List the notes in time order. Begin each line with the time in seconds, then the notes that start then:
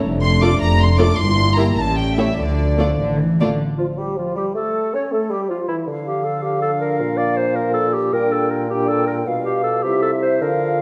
Already playing: A3
0.04 F1 F2 D4
0.22 C6
0.41 A3 F4 A4 D5 D6
0.60 F1 F2 A#5
0.79 C6
0.98 A3 F4 A4 D5 D6
1.17 G1 G2 A#3 E4 C6
1.56 A#3 E4 G4 E5 A#5
1.77 A1 A2 G3 C#4 A5
1.97 G5
2.17 A3 E4 G4 C#5 E5
2.37 D2 D3 F3 D4 D5
2.79 A3 D4 F4 D5
2.98 A1 D3
3.19 E3
3.39 D3 A3 D4 F4 D5
3.77 F3 F4
3.98 G3 G4
4.17 F3 F4
4.36 G3 G4
4.55 A3 A4
4.93 C#4 C#5
5.12 A3 A4
5.30 G3 G4
5.49 F3 F4
5.68 E3 E4
5.87 D3 F3 D4 F5
6.07 G4
6.24 A4
6.42 G4
6.62 A4
6.81 A#4
7.00 A#2
7.17 D5
7.37 C5
7.55 A#4
7.74 A4
7.94 G4
8.12 A#2 G3 D4 A#4 G5
8.32 A4
8.51 A#4
8.69 G3 D4 G4 G5
8.89 A4
9.07 A#4
9.26 B2 G3 F4 F5
9.44 G4
9.63 A4
9.83 C3 G3 E4 G4 E5
10.02 A4
10.22 C5
10.41 D3 F3 F4 A#4 F5